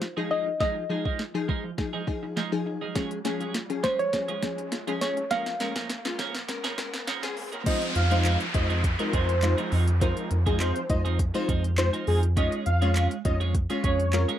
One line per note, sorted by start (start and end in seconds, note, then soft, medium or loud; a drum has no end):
0.00 0.16 F4 medium
0.00 0.34 C5 loud
0.00 muted clean electric guitar stroke soft
0.00 snare medium
0.00 riser medium
0.17 0.52 F3 medium
0.17 0.30 F3 medium
0.17 0.29 F3 medium
0.17 0.30 G#3 medium
0.17 0.52 D#4 medium
0.17 0.31 D#4 medium
0.17 0.31 G#4 medium
0.17 0.52 G#4 medium
0.31 0.48 F3 medium
0.31 0.46 G#3 medium
0.31 0.45 D#4 medium
0.31 0.46 D#4 medium
0.31 0.45 G#4 medium
0.31 0.44 D#5 loud
0.46 0.59 D#4 medium
0.46 muted clean electric guitar stroke soft
0.60 0.82 F3 medium
0.60 0.84 F3 medium
0.60 0.75 F3 medium
0.60 0.76 G#3 medium
0.60 0.84 D#4 medium
0.60 0.75 D#4 loud
0.60 0.85 G#4 medium
0.60 0.75 G#4 loud
0.60 1.74 D#5 loud
0.60 kick loud
0.60 snare medium
0.76 muted clean electric guitar stroke soft
0.90 1.06 F3 medium
0.90 1.25 F3 medium
0.90 1.04 F3 medium
0.90 1.05 G#3 medium
0.90 1.25 D#4 medium
0.90 1.04 D#4 medium
0.90 1.26 G#4 medium
0.90 1.04 G#4 medium
1.05 1.22 F3 medium
1.05 1.22 G#3 medium
1.05 1.18 D#4 medium
1.05 1.21 D#4 medium
1.05 1.21 G#4 medium
1.05 kick medium
1.19 1.34 F4 medium
1.19 snare medium
1.34 1.70 F3 medium
1.34 1.48 F3 medium
1.34 1.70 D#4 medium
1.34 1.70 G#4 loud
1.34 muted clean electric guitar stroke soft
1.48 1.70 F3 medium
1.48 1.63 G#3 medium
1.48 1.64 G#3 medium
1.48 1.64 D#4 loud
1.48 1.63 G#4 loud
1.48 kick loud
1.64 1.77 F3 medium
1.64 muted clean electric guitar stroke soft
1.78 2.02 F3 medium
1.78 2.02 D#4 medium
1.78 2.02 G#4 loud
1.78 muted clean electric guitar stroke soft
1.78 kick medium
1.78 snare medium
1.93 2.06 F3 medium
1.93 2.06 G#3 medium
1.93 2.07 D#4 medium
1.93 2.07 G#4 medium
2.07 2.43 F3 loud
2.07 2.22 F3 medium
2.07 2.43 D#4 medium
2.07 2.43 G#4 loud
2.07 muted clean electric guitar stroke soft
2.07 kick loud
2.23 2.36 D#4 medium
2.23 muted clean electric guitar stroke soft
2.37 2.58 F3 medium
2.37 2.52 G#3 loud
2.37 2.52 D#4 loud
2.37 2.51 F4 medium
2.37 2.51 G#4 medium
2.37 snare medium
2.52 2.87 F3 medium
2.52 2.65 F3 medium
2.52 2.87 D#4 medium
2.52 2.87 G#4 loud
2.52 muted clean electric guitar stroke medium
2.66 2.81 D#4 medium
2.66 muted clean electric guitar stroke soft
2.81 2.95 F3 medium
2.81 2.94 G#3 medium
2.81 2.95 D#4 medium
2.81 2.96 D#4 medium
2.81 2.96 G#4 medium
2.95 3.19 F3 medium
2.95 3.10 F3 medium
2.95 3.17 G#3 medium
2.95 3.19 C#4 medium
2.95 3.11 C#4 medium
2.95 3.11 F4 loud
2.95 3.20 G#4 loud
2.95 3.10 G#4 medium
2.95 kick loud
2.95 snare medium
2.95 closed hi-hat medium
3.11 muted clean electric guitar stroke soft
3.11 closed hi-hat medium
3.25 3.60 F3 medium
3.25 3.39 F3 medium
3.25 3.41 G#3 medium
3.25 3.61 C#4 medium
3.25 3.40 C#4 medium
3.25 3.40 F4 medium
3.25 3.61 G#4 loud
3.25 3.39 G#4 medium
3.25 snare medium
3.25 closed hi-hat medium
3.40 3.57 G#3 medium
3.40 3.53 C#4 medium
3.40 3.57 C#4 medium
3.40 3.57 F4 medium
3.40 3.56 G#4 medium
3.40 closed hi-hat soft
3.54 3.69 F4 medium
3.54 snare medium
3.54 closed hi-hat medium
3.70 4.05 F3 medium
3.70 3.83 F3 medium
3.70 4.05 C#4 medium
3.70 4.05 G#4 medium
3.70 muted clean electric guitar stroke soft
3.70 closed hi-hat medium
3.83 4.05 G#3 medium
3.83 3.98 G#3 medium
3.83 3.99 C#4 loud
3.83 3.99 F4 loud
3.83 3.98 G#4 medium
3.83 4.00 C5 loud
3.83 kick loud
3.83 snare medium
3.83 closed hi-hat medium
3.99 4.12 F3 medium
3.99 4.68 C#5 loud
3.99 muted clean electric guitar stroke soft
3.99 closed hi-hat soft
4.13 4.37 F3 medium
4.13 4.37 C#4 medium
4.13 4.37 G#4 medium
4.13 muted clean electric guitar stroke soft
4.13 kick medium
4.13 snare medium
4.13 closed hi-hat medium
4.28 4.41 F3 medium
4.28 4.41 G#3 medium
4.28 4.42 C#4 medium
4.28 4.42 F4 medium
4.28 4.42 G#4 medium
4.28 closed hi-hat soft
4.42 4.57 F3 medium
4.42 4.78 F3 medium
4.42 4.78 C#4 medium
4.42 4.78 G#4 medium
4.42 muted clean electric guitar stroke soft
4.42 kick loud
4.42 snare loud
4.42 closed hi-hat medium
4.58 4.71 C#4 medium
4.58 muted clean electric guitar stroke soft
4.58 closed hi-hat medium
4.72 4.86 F4 medium
4.72 muted clean electric guitar stroke soft
4.72 snare loud
4.72 closed hi-hat loud
4.87 5.22 F3 medium
4.87 5.00 F3 medium
4.87 5.00 G#3 medium
4.87 5.23 C#4 medium
4.87 5.01 C#4 medium
4.87 5.01 F4 medium
4.87 5.02 G#4 medium
4.87 5.23 G#4 medium
4.87 closed hi-hat soft
5.01 5.19 G#3 medium
5.01 5.16 C#4 medium
5.01 5.17 C#4 medium
5.01 5.16 F4 medium
5.01 5.16 G#4 medium
5.01 5.32 C#5 medium
5.01 snare medium
5.01 closed hi-hat medium
5.17 5.30 C#4 medium
5.17 muted clean electric guitar stroke soft
5.17 closed hi-hat medium
5.31 5.45 A#2 loud
5.31 5.53 F3 medium
5.31 5.55 G#3 medium
5.31 5.46 A#3 loud
5.31 5.55 C#4 medium
5.31 5.46 C#4 loud
5.31 5.45 G#4 loud
5.31 5.55 A#4 medium
5.31 6.15 F5 loud
5.31 kick loud
5.31 snare loud
5.31 closed hi-hat medium
5.46 muted clean electric guitar stroke soft
5.46 snare loud
5.46 closed hi-hat medium
5.60 5.75 A#2 medium
5.60 5.76 F3 medium
5.60 5.96 G#3 medium
5.60 5.75 A#3 medium
5.60 5.96 C#4 medium
5.60 5.75 C#4 medium
5.60 5.74 G#4 medium
5.60 5.96 A#4 medium
5.60 snare loud
5.60 closed hi-hat medium
5.75 5.92 F3 medium
5.75 5.89 A#3 medium
5.75 5.92 A#3 medium
5.75 5.92 C#4 medium
5.75 5.92 G#4 medium
5.75 kick medium
5.75 snare loud
5.75 closed hi-hat soft
5.89 6.04 C#4 medium
5.89 snare loud
5.89 closed hi-hat medium
6.05 6.18 A#2 medium
6.05 6.40 G#3 medium
6.05 6.40 C#4 medium
6.05 6.40 F4 loud
6.05 muted clean electric guitar stroke soft
6.05 snare loud
6.05 closed hi-hat medium
6.19 6.41 F3 medium
6.19 6.34 G#3 medium
6.19 6.34 A#3 medium
6.19 6.34 C#4 loud
6.19 6.33 G#4 loud
6.19 kick loud
6.19 snare loud
6.19 closed hi-hat medium
6.34 6.48 A#2 medium
6.34 muted clean electric guitar stroke soft
6.34 snare loud
6.34 closed hi-hat soft
6.48 6.72 G#3 medium
6.48 6.73 C#4 medium
6.48 6.73 A#4 loud
6.48 muted clean electric guitar stroke soft
6.48 kick medium
6.48 snare loud
6.48 closed hi-hat loud
6.64 6.77 A#2 medium
6.64 6.77 F3 medium
6.64 6.77 A#3 medium
6.64 6.77 C#4 medium
6.64 6.78 G#4 medium
6.64 snare loud
6.64 closed hi-hat medium
6.78 6.93 A#2 medium
6.78 7.14 G#3 loud
6.78 7.14 C#4 medium
6.78 7.14 A#4 loud
6.78 muted clean electric guitar stroke soft
6.78 kick loud
6.78 snare loud
6.78 closed hi-hat medium
6.94 7.07 A#3 medium
6.94 muted clean electric guitar stroke medium
6.94 snare loud
6.94 closed hi-hat medium
7.07 7.29 F3 medium
7.07 7.23 A#3 loud
7.07 7.22 C#4 medium
7.07 7.22 C#4 loud
7.07 7.22 G#4 loud
7.07 snare loud
7.07 closed hi-hat loud
7.23 7.36 A#2 medium
7.23 7.58 G#3 loud
7.23 7.58 C#4 medium
7.23 7.58 G#4 loud
7.23 muted clean electric guitar stroke medium
7.23 snare loud
7.23 closed hi-hat medium
7.37 7.51 A#3 medium
7.37 muted clean electric guitar stroke soft
7.37 open hi-hat medium
7.52 7.65 F3 medium
7.52 7.65 A#3 medium
7.52 7.66 A#3 medium
7.52 7.67 C#4 medium
7.52 7.66 G#4 medium
7.52 closed hi-hat medium
7.66 7.93 F3 medium
7.66 8.02 G#3 medium
7.66 7.94 C4 loud
7.66 8.02 D#4 medium
7.66 7.94 D#4 medium
7.66 8.02 F4 medium
7.66 7.94 G#4 loud
7.66 8.02 C5 medium
7.66 7.89 D#5 loud
7.66 kick loud
7.66 closed hi-hat medium
7.66 crash loud
7.66 downlifter medium
7.82 closed hi-hat medium
7.95 8.37 F2 medium
7.95 8.38 F5 medium
7.95 muted clean electric guitar stroke soft
7.95 closed hi-hat medium
8.11 8.23 F3 medium
8.11 8.46 G#3 medium
8.11 8.24 C4 medium
8.11 8.25 D#4 medium
8.11 8.46 D#4 medium
8.11 8.46 F4 medium
8.11 8.25 G#4 medium
8.11 8.46 C5 medium
8.11 closed hi-hat soft
8.25 8.47 F3 medium
8.25 8.40 C4 medium
8.25 8.40 D#4 medium
8.25 8.39 G#4 medium
8.25 clap loud
8.25 closed hi-hat loud
8.40 muted clean electric guitar stroke medium
8.40 closed hi-hat medium
8.54 8.96 F2 medium
8.54 8.90 G#3 medium
8.54 8.90 D#4 medium
8.54 8.90 F4 medium
8.54 8.90 C5 medium
8.54 8.66 D#5 medium
8.54 muted clean electric guitar stroke soft
8.54 kick loud
8.54 closed hi-hat medium
8.70 8.82 F3 medium
8.70 8.83 C4 medium
8.70 8.83 D#4 medium
8.70 8.84 G#4 medium
8.70 closed hi-hat soft
8.84 muted clean electric guitar stroke soft
8.84 kick medium
8.84 closed hi-hat loud
8.99 9.11 F3 medium
8.99 9.34 G#3 medium
8.99 9.12 C4 medium
8.99 9.12 D#4 medium
8.99 9.34 D#4 medium
8.99 9.35 F4 medium
8.99 9.13 G#4 medium
8.99 9.35 A#4 medium
8.99 closed hi-hat medium
9.12 9.55 F2 loud
9.12 9.35 F3 medium
9.12 9.28 C4 medium
9.12 9.28 D#4 loud
9.12 9.27 G#4 loud
9.12 9.56 C5 medium
9.12 kick loud
9.12 closed hi-hat medium
9.28 muted clean electric guitar stroke soft
9.28 closed hi-hat medium
9.42 9.91 G#3 medium
9.42 9.91 D#4 medium
9.42 9.91 F4 medium
9.42 9.91 C5 medium
9.42 muted clean electric guitar stroke soft
9.42 clap loud
9.42 closed hi-hat loud
9.58 9.70 F3 medium
9.58 9.71 C4 medium
9.58 9.71 D#4 medium
9.58 9.72 G#4 medium
9.58 closed hi-hat medium
9.71 10.13 F2 loud
9.71 9.89 F3 medium
9.71 9.87 C4 medium
9.71 9.87 D#4 medium
9.71 9.86 G#4 medium
9.71 open hi-hat medium
9.87 muted clean electric guitar stroke soft
9.87 closed hi-hat medium
10.01 10.29 F3 medium
10.01 10.37 G#3 medium
10.01 10.29 C4 loud
10.01 10.37 D#4 medium
10.01 10.29 D#4 loud
10.01 10.37 F4 medium
10.01 10.29 G#4 medium
10.01 10.37 A#4 medium
10.01 10.13 C5 loud
10.01 kick loud
10.01 closed hi-hat loud
10.17 closed hi-hat medium
10.31 10.72 F2 loud
10.31 muted clean electric guitar stroke soft
10.31 closed hi-hat medium
10.46 10.59 F3 medium
10.46 10.81 G#3 medium
10.46 10.59 C4 medium
10.46 10.81 D#4 medium
10.46 10.60 D#4 medium
10.46 10.82 F4 medium
10.46 10.60 G#4 medium
10.46 10.57 G#4 medium
10.46 10.82 G#4 medium
10.46 kick medium
10.46 closed hi-hat soft
10.60 10.82 F3 medium
10.60 10.76 C4 medium
10.60 10.75 D#4 medium
10.60 10.74 G#4 medium
10.60 10.83 C5 medium
10.60 clap loud
10.60 closed hi-hat loud
10.75 muted clean electric guitar stroke soft
10.75 closed hi-hat medium
10.89 11.31 F2 medium
10.89 11.25 G#3 medium
10.89 11.25 D#4 medium
10.89 11.26 F4 medium
10.89 11.26 C5 medium
10.89 11.02 D#5 medium
10.89 muted clean electric guitar stroke soft
10.89 kick loud
10.89 closed hi-hat medium
11.05 11.18 F3 medium
11.05 11.18 C4 medium
11.05 11.18 D#4 medium
11.05 11.19 G#4 medium
11.05 closed hi-hat soft
11.19 muted clean electric guitar stroke soft
11.19 kick medium
11.19 closed hi-hat medium
11.34 11.47 F3 medium
11.34 11.70 G#3 loud
11.34 11.47 C4 medium
11.34 11.70 D#4 medium
11.34 11.48 D#4 medium
11.34 11.70 F4 medium
11.34 11.48 G#4 medium
11.34 11.70 C5 loud
11.34 closed hi-hat medium
11.48 11.90 F2 loud
11.48 11.70 F3 medium
11.48 11.64 C4 medium
11.48 11.63 D#4 medium
11.48 11.63 G#4 loud
11.48 kick loud
11.48 closed hi-hat medium
11.64 muted clean electric guitar stroke medium
11.64 closed hi-hat medium
11.78 12.26 G#3 medium
11.78 12.26 D#4 medium
11.78 12.26 F4 medium
11.78 11.90 C5 loud
11.78 12.26 C5 medium
11.78 muted clean electric guitar stroke soft
11.78 clap loud
11.78 closed hi-hat loud
11.93 12.06 F3 medium
11.93 12.07 C4 medium
11.93 12.07 D#4 medium
11.93 12.08 G#4 medium
11.93 closed hi-hat medium
12.07 12.49 F2 loud
12.07 12.25 F3 medium
12.07 12.23 C4 medium
12.07 12.22 D#4 medium
12.07 12.19 G#4 medium
12.07 12.22 G#4 medium
12.07 open hi-hat medium
12.23 muted clean electric guitar stroke soft
12.23 closed hi-hat medium
12.37 12.64 G#3 loud
12.37 12.72 G#3 medium
12.37 12.72 C#4 medium
12.37 12.64 C#4 loud
12.37 12.73 F4 medium
12.37 12.65 F4 loud
12.37 12.65 G#4 loud
12.37 12.73 C#5 medium
12.37 12.59 D#5 loud
12.37 kick loud
12.37 closed hi-hat medium
12.52 closed hi-hat medium
12.66 13.08 F2 medium
12.66 13.08 F5 medium
12.66 muted clean electric guitar stroke soft
12.66 closed hi-hat medium
12.81 13.17 G#3 medium
12.81 12.94 G#3 medium
12.81 13.17 C#4 medium
12.81 12.95 C#4 medium
12.81 13.17 F4 medium
12.81 12.95 F4 medium
12.81 12.96 G#4 medium
12.81 13.17 C#5 medium
12.81 closed hi-hat soft
12.95 13.17 G#3 medium
12.95 13.11 C#4 medium
12.95 13.10 F4 medium
12.95 13.10 G#4 medium
12.95 clap loud
12.95 closed hi-hat loud
13.11 muted clean electric guitar stroke soft
13.11 closed hi-hat medium
13.25 13.67 F2 loud
13.25 13.61 G#3 medium
13.25 13.61 C#4 medium
13.25 13.61 F4 medium
13.25 13.61 C#5 medium
13.25 13.37 D#5 medium
13.25 muted clean electric guitar stroke soft
13.25 kick loud
13.25 closed hi-hat medium
13.40 13.53 G#3 medium
13.40 13.54 C#4 medium
13.40 13.54 F4 medium
13.40 13.54 G#4 medium
13.40 closed hi-hat soft
13.54 muted clean electric guitar stroke soft
13.54 kick medium
13.54 closed hi-hat loud
13.70 14.05 G#3 medium
13.70 13.82 G#3 medium
13.70 14.05 C#4 medium
13.70 13.83 C#4 medium
13.70 14.05 F4 medium
13.70 13.83 F4 medium
13.70 13.84 G#4 medium
13.70 14.05 C#5 medium
13.70 closed hi-hat medium
13.83 14.25 F2 loud
13.83 14.05 G#3 medium
13.83 13.99 C#4 medium
13.83 13.99 F4 loud
13.83 13.98 G#4 medium
13.83 14.26 C#5 medium
13.83 kick loud
13.83 closed hi-hat medium
13.99 muted clean electric guitar stroke soft
13.99 closed hi-hat medium
14.13 14.39 G#3 medium
14.13 14.39 C#4 medium
14.13 14.39 F4 medium
14.13 14.39 A#4 medium
14.13 muted clean electric guitar stroke soft
14.13 clap loud
14.13 closed hi-hat loud
14.28 14.39 G#3 medium
14.28 14.39 C#4 medium
14.28 14.39 F4 medium
14.28 14.39 G#4 medium
14.28 closed hi-hat medium